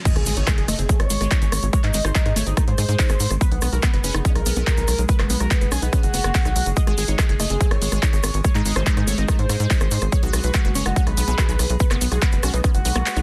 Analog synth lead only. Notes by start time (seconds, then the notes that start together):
0.05 D#5
0.16 G#4
0.26 G#4
0.37 C#5
0.47 G#4
0.58 G#4
0.68 D#5
0.79 G#4
0.89 G#4
1.00 C#5
1.73 C#5
1.84 D#4
1.94 D#4
2.05 C5
2.15 D#4
2.26 D#4
2.36 C#5
2.47 D#4
2.57 D#4
2.68 C5
3.41 B4
3.52 B3
3.62 B3
3.73 A#4
3.83 B3
3.94 B3
4.04 B4
4.15 B3
4.25 B3
4.36 A#4
5.09 B4
5.19 B3
5.30 B3
5.40 A#4
5.51 B3
5.61 B3
5.72 G#4
5.82 B3
5.93 B3
6.03 F#4
6.77 D#5
6.87 G#4
6.98 G#4
7.08 C#5
7.19 G#4
7.29 G#4
7.40 D#5
7.50 G#4
7.61 G#4
7.71 C#5
8.45 C#5
8.55 D#4
8.65 D#4
8.76 C5
8.86 D#4
8.97 D#4
9.07 C#5
9.18 D#4
9.28 D#4
9.39 C5
10.12 C#5
10.23 F#4
10.33 F#4
10.44 B4
10.54 F#4
10.65 F#4
10.75 C#5
10.86 F#4
10.96 F#4
11.07 B4
11.80 B4
11.91 B3
12.01 B3
12.12 G#4
12.22 B3
12.33 B3
12.43 F#4
12.54 B3
12.64 B3
12.75 F#4